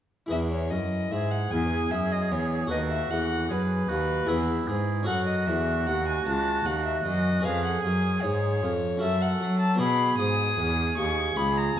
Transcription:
0.26 cello E2, harpsichord E4 G#4 B4
0.31 harpsichord E2, violin E5
0.51 violin C#5
0.70 cello F#2, harpsichord F#2, violin D#5
1.11 cello G#2, harpsichord G#2, oboe G#4, violin E5
1.31 violin F#5
1.51 cello E2, harpsichord E2, violin G#5
1.91 cello F#2, harpsichord F#2, violin E5
2.12 violin D#5
2.31 cello E2, harpsichord E2, violin C#5
2.67 harpsichord F#4 A4 B4, oboe F#4
2.71 cello D#2, harpsichord D#2, violin D#5
2.91 violin E5
3.10 cello E2, harpsichord E2, violin F#5
3.49 cello F#2, harpsichord F#2, oboe G#4, violin B4
3.88 cello D#2, harpsichord D#2, oboe F#4
4.25 cello E2, harpsichord E4 G#4 B4, oboe E4
4.30 harpsichord E2
4.67 cello G#2, harpsichord G#2, oboe G#4
5.03 cello F#2, harpsichord C#4 F#4 A4, oboe F#4
5.07 harpsichord F#2, violin F#5
5.27 violin D#5
5.47 cello E2, harpsichord E2, violin E5
5.87 cello D#2, harpsichord D#2, violin F#5
6.08 violin G#5
6.27 cello C#2, harpsichord C#2, violin A5
6.65 harpsichord D#2, cello D#2, violin F#5
6.85 violin E5
7.05 cello F#2, harpsichord F#2, violin D#5
7.40 harpsichord C#4 G#4 B4
7.45 harpsichord F2, cello F2, oboe G#4, violin F5
7.65 violin F#5
7.83 cello F#2, harpsichord F#2, violin G#5
8.22 harpsichord G#2, cello G#2, violin C#5
8.62 cello F2, harpsichord F2
8.97 harpsichord C#4 F#4 A4, oboe A4
9.02 harpsichord F#2, cello F#2, violin E5
9.22 violin F#5
9.40 harpsichord F#3, cello F#3
9.60 violin A5
9.75 harpsichord B3 F#4 B4, oboe G#4
9.79 harpsichord B2, cello B2, violin B5
10.18 harpsichord G#2, cello G#2, violin D#6
10.58 harpsichord E2, cello E2
10.97 harpsichord D#2, cello D#2, violin C#6
11.36 harpsichord C#2, cello C#2, violin B5
11.57 violin A#5
11.76 harpsichord E2, cello E2

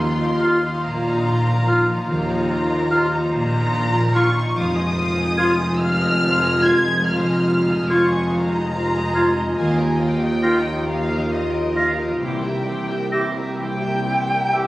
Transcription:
Already playing: cello section D#2, double bass section D#2, harp D#3 F3 D#4 F5, viola section F3 F4, french horn section A#3 F4, violin section F5 C6
0.02 harp F4, violin section F4
0.21 violin section A#4, harp D#5
0.41 clarinet F4, oboe F5, harp F5, flute F6
0.45 violin section F4
0.63 violin section D#4, harp D#5
0.83 double bass section A#1, cello section A#2, violin section A#3 A#5, harp F5
1.04 violin section D#4, harp F4
1.25 harp D#4, violin section F4
1.46 harp F3, violin section A#4
1.66 harp D#4, clarinet F4, violin section F4, oboe F5, flute F6
1.87 harp F3, violin section D#4
2.08 double bass section D#2, cello section D#2, harp D#3, violin section A#3 A#5
2.28 harp D#4, violin section D#4
2.49 harp F4, violin section F4
2.70 violin section A#4, harp D#5
2.91 clarinet F4, violin section F4, harp F5, oboe F5, flute F6
3.11 harp D#5
3.15 violin section D#4
3.32 double bass section A#1, cello section A#2, violin section A#3 A#5, harp F5
3.53 violin section D#4, harp F4
3.74 harp D#4, violin section F4
3.95 harp F3, violin section A#4
4.15 harp D#4, violin section F4 C#6, clarinet F4, oboe F5, flute F6
4.36 harp F3, violin section D#4
4.55 double bass section F1, cello section F2, viola section D#3 F4, harp F3, french horn section G#3 F4, violin section C5 F5 D#6
4.76 viola section F3 D#4, harp C4, violin section G#4 D#5
4.96 viola section D#3 F4, harp G#4, violin section C5 F5
5.18 viola section F3 D#4, violin section G#4 D#5
5.38 viola section D#3 F4, clarinet F4, violin section C5 F5, harp F5, oboe F5, flute G#6
5.58 viola section F3 D#4, violin section G#4 D#5, harp G#5
5.78 viola section D#3 F4, violin section C5 F5 F6, harp F5
5.98 viola section F3 D#4, violin section G#4 D#5, harp G#4
6.20 viola section D#3 F4, harp F4, violin section C5 F5
6.40 viola section F3 D#4, harp G#3, violin section G#4 D#5
6.62 viola section D#3 F4, harp C4, clarinet F4, violin section C5 F5 G#6, oboe F5, flute G#6
6.84 viola section F3 D#4, harp G#3, violin section G#4 D#5
7.05 viola section D#3 F4, harp F3, violin section C5 F5 F6
7.27 viola section F3 D#4, harp C4, violin section G#4 D#5
7.47 viola section D#3 F4, harp G#4, violin section C5 F5
7.68 viola section F3 D#4, violin section G#4 D#5
7.89 viola section D#3 F4, clarinet F4, violin section C5 F5 C#6, oboe F5, harp F5, flute G#6
8.10 viola section F3 D#4, violin section G#4 D#5, harp G#5
8.31 viola section D#3 F4, violin section C5 F5 A#5, harp F5
8.53 viola section F3 D#4, violin section G#4 D#5, harp G#4
8.73 viola section D#3 F4, harp F4, violin section C5 F5
8.95 viola section F3 D#4, harp G#3, violin section G#4 D#5
9.15 viola section D#3 F4, harp C4, clarinet F4, violin section C5 F5, oboe F5, flute G#6
9.36 viola section F3 D#4, harp G#3, violin section G#4 D#5
9.55 cello section D#2, double bass section D#2, viola section D#3 F4, harp D#3, french horn section A#3 F4, violin section D#5 F5 G#5
9.78 viola section F3 D#4, harp D#4, violin section A#4 D#5
10.00 viola section D#3 F4, harp A#4, violin section D#5 F5 G5
10.21 viola section F3 D#4, violin section A#4 D#5, harp D#5
10.43 viola section D#3 F4, clarinet F4, violin section D#5 F5, oboe F5, harp F5, flute A#6
10.65 viola section F3 D#4, violin section A#4 D#5, harp A#5
10.86 viola section D#3 F4, french horn section A#3 F4, violin section D#5 F5, harp F5
11.09 viola section F3 D#4, violin section A#4 D#5, harp A#4
11.30 viola section D#3 F4, harp F4, violin section D#5 F5
11.52 viola section F3 D#4, harp A#3, violin section A#4 D#5
11.74 viola section D#3 F4, harp D#4, clarinet F4, violin section D#5 F5, oboe F5, flute A#6
11.96 viola section F3 D#4, harp A#3, violin section A#4 D#5
12.19 double bass section C2, cello section C2, harp C3, viola section E3 E4, french horn section A#3 E4, violin section G4 C5 G5
12.42 viola section G3 G4, harp A#3, violin section A#4 E5
12.65 viola section E3 E4, violin section G4 C5, harp G4
12.89 viola section G3 G4, violin section A#4 E5, harp A#4
13.12 viola section E3 E4, violin section G4 C5, clarinet G4, oboe E5, harp E5, flute A#6
13.35 viola section G3 G4, violin section A#4 E5, harp G5
13.58 viola section E3 E4, violin section G4 C5 G5, harp E5, flute G5
13.80 viola section G3 G4, harp G4, violin section A#4 E5
14.05 viola section E3 E4, harp E4, violin section G4 C5
14.28 harp G3, viola section G3 G4, violin section A#4 E5
14.53 viola section E3 E4, harp A#3, violin section G4 C5, clarinet G4, oboe E5

